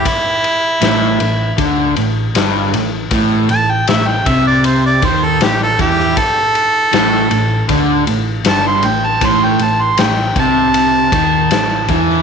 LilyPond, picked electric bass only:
\new Staff \with { instrumentName = "Picked electric bass" } { \clef bass \time 4/4 \key a \minor \tempo 4 = 79 r4 a,,8 a,,8 d,8 a,,8 g,,8 a,,8 | a,,8 a,,8 a,,8 c,4 dis,8 a,,8 e,8 | r4 a,,8 a,,8 d,8 a,,8 g,,8 a,,8 | a,,8 a,,8 a,,8 c,4 dis,8 a,,8 e,8 | }